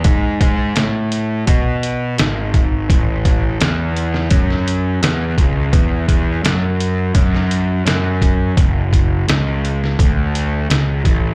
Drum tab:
HH |x-x-x-x-x-x-x-x-|x-x-x-x-x-x-x-x-|x-x-x-x-x-x-x-x-|x-x-x-x-x-x-x-x-|
SD |----o-------o---|----o--o-o--o---|----o----o--o---|----o--o----o---|
BD |o-o-----o-----o-|o-o-----o-----o-|o-o-----o-----o-|o-o-----o-----o-|